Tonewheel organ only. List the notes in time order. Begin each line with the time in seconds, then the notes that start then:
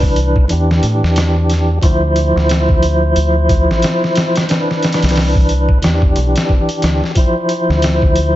Already playing: E3 D4 B4
0.48 E3 D4
0.52 G4
1.82 F3 E4 C5
4.48 E3 D4
4.52 B4
5.82 E3 D4 G4
7.15 F3 E4 C5